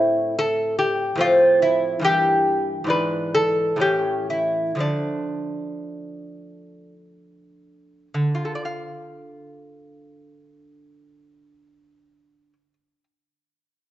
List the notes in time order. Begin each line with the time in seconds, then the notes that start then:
Already playing: A2 A3 C4 E4
0.39 A4
0.79 G4
1.16 A2 F3 C4
1.21 F4
1.62 E4
2.00 G2 E3 A#3
2.04 G4
2.84 G#2 E3
2.88 D4 B4
3.35 A4
3.76 A2 E3 C#4
3.81 G4
4.30 E4
4.75 D3 F3 A3
4.80 D4
8.14 D3
8.35 F4
8.45 A4
8.55 D5
8.65 F5